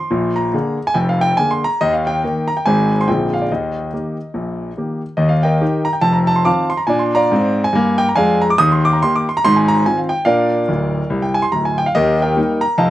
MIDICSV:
0, 0, Header, 1, 2, 480
1, 0, Start_track
1, 0, Key_signature, -3, "major"
1, 0, Tempo, 422833
1, 128, Time_signature, 4, 2, 24, 8
1, 14644, End_track
2, 0, Start_track
2, 0, Title_t, "Grand piano"
2, 0, Program_c, 0, 0
2, 0, Note_on_c, 0, 84, 72
2, 119, Note_on_c, 0, 46, 70
2, 124, Note_on_c, 0, 34, 66
2, 319, Control_c, 0, 64, 127
2, 407, Note_on_c, 0, 82, 71
2, 414, Note_off_c, 0, 84, 0
2, 531, Note_off_c, 0, 46, 0
2, 534, Note_off_c, 0, 34, 0
2, 603, Note_on_c, 0, 58, 46
2, 607, Note_on_c, 0, 50, 48
2, 615, Note_on_c, 0, 68, 54
2, 622, Control_c, 0, 64, 0
2, 868, Note_off_c, 0, 58, 0
2, 872, Note_off_c, 0, 50, 0
2, 877, Note_off_c, 0, 68, 0
2, 988, Note_off_c, 0, 82, 0
2, 988, Note_on_c, 0, 80, 93
2, 1070, Note_on_c, 0, 79, 71
2, 1076, Note_on_c, 0, 29, 76
2, 1076, Note_on_c, 0, 41, 73
2, 1085, Note_off_c, 0, 80, 0
2, 1224, Note_off_c, 0, 79, 0
2, 1237, Note_on_c, 0, 77, 68
2, 1377, Note_on_c, 0, 79, 101
2, 1381, Note_off_c, 0, 77, 0
2, 1489, Note_off_c, 0, 29, 0
2, 1489, Note_off_c, 0, 41, 0
2, 1556, Note_on_c, 0, 80, 91
2, 1563, Note_on_c, 0, 50, 44
2, 1567, Note_off_c, 0, 79, 0
2, 1576, Note_on_c, 0, 58, 47
2, 1581, Note_on_c, 0, 68, 49
2, 1708, Note_off_c, 0, 80, 0
2, 1711, Note_on_c, 0, 84, 78
2, 1829, Note_off_c, 0, 50, 0
2, 1838, Note_off_c, 0, 58, 0
2, 1841, Note_off_c, 0, 68, 0
2, 1858, Note_off_c, 0, 84, 0
2, 1866, Note_on_c, 0, 82, 95
2, 2052, Note_off_c, 0, 82, 0
2, 2053, Note_on_c, 0, 75, 99
2, 2058, Note_on_c, 0, 39, 85
2, 2058, Note_on_c, 0, 51, 70
2, 2193, Note_on_c, 0, 77, 62
2, 2196, Note_off_c, 0, 75, 0
2, 2289, Control_c, 0, 64, 127
2, 2339, Note_off_c, 0, 77, 0
2, 2349, Note_on_c, 0, 79, 83
2, 2462, Note_off_c, 0, 39, 0
2, 2462, Note_off_c, 0, 51, 0
2, 2538, Control_c, 0, 64, 0
2, 2543, Note_on_c, 0, 58, 47
2, 2545, Note_on_c, 0, 51, 54
2, 2545, Note_on_c, 0, 70, 48
2, 2803, Note_off_c, 0, 58, 0
2, 2805, Note_off_c, 0, 51, 0
2, 2805, Note_off_c, 0, 70, 0
2, 2811, Note_on_c, 0, 82, 85
2, 2825, Note_off_c, 0, 79, 0
2, 2910, Note_off_c, 0, 82, 0
2, 2915, Note_on_c, 0, 79, 63
2, 3009, Note_off_c, 0, 79, 0
2, 3015, Note_on_c, 0, 80, 90
2, 3018, Note_on_c, 0, 51, 49
2, 3027, Note_on_c, 0, 44, 73
2, 3028, Note_on_c, 0, 32, 82
2, 3031, Note_on_c, 0, 60, 38
2, 3040, Note_on_c, 0, 68, 43
2, 3250, Control_c, 0, 64, 127
2, 3280, Note_off_c, 0, 51, 0
2, 3289, Note_off_c, 0, 60, 0
2, 3296, Note_off_c, 0, 68, 0
2, 3398, Note_off_c, 0, 80, 0
2, 3415, Note_on_c, 0, 84, 75
2, 3428, Note_off_c, 0, 44, 0
2, 3429, Note_off_c, 0, 32, 0
2, 3494, Note_on_c, 0, 79, 68
2, 3498, Control_c, 0, 64, 0
2, 3500, Note_off_c, 0, 84, 0
2, 3501, Note_on_c, 0, 46, 58
2, 3501, Note_on_c, 0, 50, 36
2, 3506, Note_on_c, 0, 34, 64
2, 3513, Note_on_c, 0, 60, 36
2, 3521, Note_on_c, 0, 68, 41
2, 3698, Control_c, 0, 64, 127
2, 3763, Note_off_c, 0, 50, 0
2, 3771, Note_off_c, 0, 60, 0
2, 3777, Note_off_c, 0, 68, 0
2, 3783, Note_off_c, 0, 79, 0
2, 3786, Note_on_c, 0, 77, 63
2, 3874, Note_on_c, 0, 74, 49
2, 3879, Note_off_c, 0, 77, 0
2, 3905, Note_off_c, 0, 46, 0
2, 3908, Note_off_c, 0, 34, 0
2, 3970, Note_off_c, 0, 74, 0
2, 3980, Control_c, 0, 64, 0
2, 3992, Note_on_c, 0, 39, 61
2, 3992, Note_on_c, 0, 51, 56
2, 3992, Note_on_c, 0, 75, 58
2, 4201, Control_c, 0, 64, 127
2, 4391, Note_off_c, 0, 51, 0
2, 4392, Note_off_c, 0, 39, 0
2, 4463, Note_on_c, 0, 51, 32
2, 4466, Control_c, 0, 64, 0
2, 4469, Note_on_c, 0, 58, 33
2, 4470, Note_on_c, 0, 67, 34
2, 4725, Note_off_c, 0, 51, 0
2, 4729, Note_off_c, 0, 58, 0
2, 4729, Note_off_c, 0, 67, 0
2, 4927, Note_on_c, 0, 46, 51
2, 4928, Note_on_c, 0, 34, 55
2, 5338, Note_off_c, 0, 34, 0
2, 5338, Note_off_c, 0, 46, 0
2, 5418, Note_on_c, 0, 51, 30
2, 5423, Note_on_c, 0, 58, 36
2, 5427, Note_on_c, 0, 67, 34
2, 5681, Note_off_c, 0, 51, 0
2, 5685, Note_off_c, 0, 58, 0
2, 5687, Note_off_c, 0, 67, 0
2, 5715, Note_off_c, 0, 75, 0
2, 5868, Note_on_c, 0, 75, 72
2, 5873, Note_on_c, 0, 39, 79
2, 5876, Note_on_c, 0, 51, 63
2, 6003, Note_on_c, 0, 77, 65
2, 6026, Note_off_c, 0, 75, 0
2, 6119, Control_c, 0, 64, 127
2, 6166, Note_on_c, 0, 79, 76
2, 6167, Note_off_c, 0, 77, 0
2, 6180, Note_on_c, 0, 75, 59
2, 6182, Note_on_c, 0, 70, 58
2, 6290, Note_off_c, 0, 39, 0
2, 6292, Note_off_c, 0, 51, 0
2, 6368, Note_on_c, 0, 51, 46
2, 6371, Note_on_c, 0, 63, 46
2, 6374, Note_on_c, 0, 67, 56
2, 6389, Control_c, 0, 64, 0
2, 6629, Note_off_c, 0, 75, 0
2, 6630, Note_off_c, 0, 70, 0
2, 6634, Note_off_c, 0, 51, 0
2, 6636, Note_off_c, 0, 63, 0
2, 6639, Note_off_c, 0, 67, 0
2, 6639, Note_on_c, 0, 82, 88
2, 6656, Note_off_c, 0, 79, 0
2, 6731, Note_on_c, 0, 79, 59
2, 6747, Note_off_c, 0, 82, 0
2, 6828, Note_on_c, 0, 81, 97
2, 6831, Note_on_c, 0, 29, 70
2, 6831, Note_on_c, 0, 41, 79
2, 6840, Note_off_c, 0, 79, 0
2, 6963, Note_on_c, 0, 82, 67
2, 6987, Note_off_c, 0, 81, 0
2, 7083, Control_c, 0, 64, 127
2, 7120, Note_on_c, 0, 81, 95
2, 7127, Note_off_c, 0, 82, 0
2, 7218, Note_on_c, 0, 84, 70
2, 7228, Note_off_c, 0, 81, 0
2, 7250, Note_off_c, 0, 29, 0
2, 7250, Note_off_c, 0, 41, 0
2, 7322, Note_on_c, 0, 86, 84
2, 7324, Note_off_c, 0, 84, 0
2, 7326, Note_on_c, 0, 51, 37
2, 7330, Note_on_c, 0, 60, 45
2, 7332, Note_on_c, 0, 65, 42
2, 7334, Note_on_c, 0, 77, 69
2, 7334, Note_on_c, 0, 81, 69
2, 7352, Control_c, 0, 64, 0
2, 7593, Note_off_c, 0, 51, 0
2, 7596, Note_off_c, 0, 60, 0
2, 7597, Note_off_c, 0, 65, 0
2, 7603, Note_on_c, 0, 84, 86
2, 7605, Note_off_c, 0, 77, 0
2, 7605, Note_off_c, 0, 81, 0
2, 7620, Note_off_c, 0, 86, 0
2, 7690, Note_on_c, 0, 82, 75
2, 7709, Note_off_c, 0, 84, 0
2, 7797, Note_on_c, 0, 80, 77
2, 7800, Note_off_c, 0, 82, 0
2, 7804, Note_on_c, 0, 46, 77
2, 7824, Note_on_c, 0, 62, 82
2, 7937, Note_on_c, 0, 84, 68
2, 7952, Note_off_c, 0, 80, 0
2, 8041, Control_c, 0, 64, 127
2, 8095, Note_off_c, 0, 84, 0
2, 8114, Note_on_c, 0, 82, 88
2, 8123, Note_on_c, 0, 77, 64
2, 8125, Note_on_c, 0, 74, 74
2, 8193, Note_off_c, 0, 46, 0
2, 8205, Note_off_c, 0, 62, 0
2, 8306, Note_on_c, 0, 44, 78
2, 8314, Control_c, 0, 64, 0
2, 8320, Note_on_c, 0, 60, 73
2, 8650, Note_off_c, 0, 77, 0
2, 8651, Note_off_c, 0, 74, 0
2, 8676, Note_on_c, 0, 80, 90
2, 8685, Note_off_c, 0, 82, 0
2, 8686, Note_off_c, 0, 44, 0
2, 8694, Note_off_c, 0, 60, 0
2, 8776, Note_on_c, 0, 43, 72
2, 8802, Note_on_c, 0, 58, 89
2, 9059, Note_on_c, 0, 79, 101
2, 9064, Note_off_c, 0, 80, 0
2, 9157, Note_off_c, 0, 79, 0
2, 9160, Note_off_c, 0, 43, 0
2, 9176, Note_off_c, 0, 58, 0
2, 9181, Note_on_c, 0, 82, 74
2, 9258, Note_on_c, 0, 80, 96
2, 9262, Note_on_c, 0, 41, 71
2, 9266, Note_off_c, 0, 82, 0
2, 9270, Note_on_c, 0, 77, 75
2, 9274, Note_on_c, 0, 74, 62
2, 9288, Note_on_c, 0, 56, 84
2, 9534, Note_off_c, 0, 77, 0
2, 9536, Note_off_c, 0, 74, 0
2, 9548, Note_off_c, 0, 80, 0
2, 9553, Note_on_c, 0, 82, 84
2, 9643, Note_off_c, 0, 41, 0
2, 9644, Note_off_c, 0, 82, 0
2, 9653, Note_on_c, 0, 86, 82
2, 9659, Note_off_c, 0, 56, 0
2, 9742, Note_off_c, 0, 86, 0
2, 9744, Note_on_c, 0, 87, 127
2, 9746, Note_on_c, 0, 39, 87
2, 9748, Note_on_c, 0, 51, 90
2, 9885, Note_off_c, 0, 87, 0
2, 9899, Note_on_c, 0, 84, 76
2, 9975, Control_c, 0, 64, 127
2, 10035, Note_off_c, 0, 84, 0
2, 10046, Note_on_c, 0, 86, 94
2, 10131, Note_off_c, 0, 86, 0
2, 10137, Note_on_c, 0, 82, 69
2, 10149, Note_off_c, 0, 39, 0
2, 10150, Note_off_c, 0, 51, 0
2, 10224, Note_off_c, 0, 82, 0
2, 10225, Control_c, 0, 64, 0
2, 10245, Note_on_c, 0, 84, 101
2, 10254, Note_on_c, 0, 51, 55
2, 10254, Note_on_c, 0, 58, 63
2, 10261, Note_on_c, 0, 67, 58
2, 10376, Note_off_c, 0, 84, 0
2, 10393, Note_on_c, 0, 86, 77
2, 10507, Note_off_c, 0, 51, 0
2, 10508, Note_off_c, 0, 58, 0
2, 10512, Note_off_c, 0, 67, 0
2, 10522, Note_off_c, 0, 86, 0
2, 10545, Note_on_c, 0, 84, 78
2, 10620, Note_off_c, 0, 84, 0
2, 10636, Note_on_c, 0, 82, 101
2, 10713, Note_off_c, 0, 82, 0
2, 10722, Note_on_c, 0, 84, 123
2, 10730, Note_on_c, 0, 32, 80
2, 10731, Note_on_c, 0, 44, 93
2, 10854, Note_off_c, 0, 84, 0
2, 10856, Note_on_c, 0, 80, 73
2, 10931, Control_c, 0, 64, 127
2, 10993, Note_on_c, 0, 82, 97
2, 10994, Note_off_c, 0, 80, 0
2, 11123, Note_off_c, 0, 32, 0
2, 11123, Note_off_c, 0, 44, 0
2, 11178, Note_off_c, 0, 82, 0
2, 11184, Control_c, 0, 64, 0
2, 11192, Note_on_c, 0, 51, 38
2, 11193, Note_on_c, 0, 80, 80
2, 11197, Note_on_c, 0, 65, 48
2, 11200, Note_on_c, 0, 60, 45
2, 11324, Note_on_c, 0, 77, 53
2, 11329, Note_off_c, 0, 80, 0
2, 11451, Note_off_c, 0, 51, 0
2, 11455, Note_off_c, 0, 65, 0
2, 11456, Note_on_c, 0, 79, 85
2, 11457, Note_off_c, 0, 60, 0
2, 11467, Note_off_c, 0, 77, 0
2, 11635, Note_on_c, 0, 77, 92
2, 11643, Note_on_c, 0, 46, 75
2, 11648, Note_on_c, 0, 74, 66
2, 11650, Note_off_c, 0, 79, 0
2, 11654, Note_on_c, 0, 70, 67
2, 11660, Note_on_c, 0, 62, 68
2, 11877, Control_c, 0, 64, 127
2, 12031, Note_off_c, 0, 46, 0
2, 12041, Note_off_c, 0, 62, 0
2, 12126, Note_on_c, 0, 38, 64
2, 12132, Note_on_c, 0, 26, 62
2, 12144, Control_c, 0, 64, 0
2, 12488, Note_off_c, 0, 38, 0
2, 12492, Note_off_c, 0, 26, 0
2, 12600, Note_on_c, 0, 36, 70
2, 12709, Note_off_c, 0, 74, 0
2, 12713, Note_off_c, 0, 70, 0
2, 12741, Note_on_c, 0, 79, 66
2, 12748, Note_off_c, 0, 77, 0
2, 12878, Note_on_c, 0, 80, 88
2, 12895, Note_off_c, 0, 79, 0
2, 12964, Note_off_c, 0, 36, 0
2, 12968, Note_on_c, 0, 84, 81
2, 12985, Note_off_c, 0, 80, 0
2, 13077, Note_off_c, 0, 84, 0
2, 13078, Note_on_c, 0, 82, 83
2, 13079, Note_on_c, 0, 26, 60
2, 13082, Note_on_c, 0, 38, 52
2, 13228, Note_on_c, 0, 80, 69
2, 13230, Note_off_c, 0, 82, 0
2, 13372, Note_on_c, 0, 79, 85
2, 13378, Note_off_c, 0, 80, 0
2, 13443, Note_off_c, 0, 26, 0
2, 13445, Note_off_c, 0, 38, 0
2, 13467, Note_on_c, 0, 77, 77
2, 13471, Note_off_c, 0, 79, 0
2, 13563, Note_on_c, 0, 75, 100
2, 13566, Note_off_c, 0, 77, 0
2, 13568, Note_on_c, 0, 51, 70
2, 13569, Note_on_c, 0, 39, 89
2, 13580, Note_on_c, 0, 70, 66
2, 13584, Note_on_c, 0, 67, 68
2, 13792, Control_c, 0, 64, 127
2, 13846, Note_off_c, 0, 70, 0
2, 13848, Note_off_c, 0, 67, 0
2, 13857, Note_off_c, 0, 75, 0
2, 13874, Note_on_c, 0, 79, 80
2, 13885, Note_on_c, 0, 70, 58
2, 13885, Note_on_c, 0, 75, 50
2, 13976, Note_off_c, 0, 51, 0
2, 13977, Note_off_c, 0, 39, 0
2, 14036, Note_on_c, 0, 55, 38
2, 14039, Note_on_c, 0, 58, 47
2, 14046, Note_on_c, 0, 63, 57
2, 14065, Control_c, 0, 64, 0
2, 14303, Note_off_c, 0, 55, 0
2, 14305, Note_off_c, 0, 58, 0
2, 14311, Note_off_c, 0, 63, 0
2, 14316, Note_on_c, 0, 82, 94
2, 14319, Note_off_c, 0, 70, 0
2, 14319, Note_off_c, 0, 75, 0
2, 14346, Note_off_c, 0, 79, 0
2, 14506, Note_on_c, 0, 81, 88
2, 14507, Note_on_c, 0, 29, 75
2, 14507, Note_on_c, 0, 41, 82
2, 14513, Note_on_c, 0, 75, 71
2, 14513, Note_on_c, 0, 77, 68
2, 14517, Note_off_c, 0, 82, 0
2, 14644, Note_off_c, 0, 29, 0
2, 14644, Note_off_c, 0, 41, 0
2, 14644, Note_off_c, 0, 75, 0
2, 14644, Note_off_c, 0, 77, 0
2, 14644, Note_off_c, 0, 81, 0
2, 14644, End_track
0, 0, End_of_file